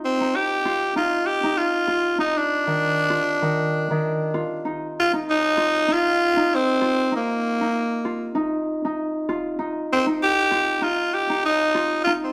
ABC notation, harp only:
X:1
M:4/4
L:1/16
Q:"Swing 16ths" 1/4=97
K:Cm
V:1 name="Harp"
z E2 z F2 E2 z E2 z F2 E2 | z E,2 z F2 E,2 z E,2 z F2 E2 | z E2 z F2 E2 z E2 z F2 E2 | z E2 z F2 E2 z E2 z F2 E2 |
z E2 z F2 E2 z E2 z F2 E2 |]